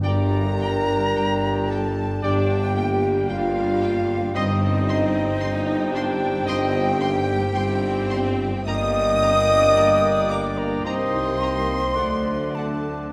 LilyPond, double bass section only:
\new Staff \with { instrumentName = "Double bass section" } { \clef bass \time 4/4 \key g \minor \tempo 4 = 55 g,,4 g,,4 g,,4 g,,4 | g,,4 g,,4 g,,4 g,,4 | g,,4 g,,4 c,4 d,4 | }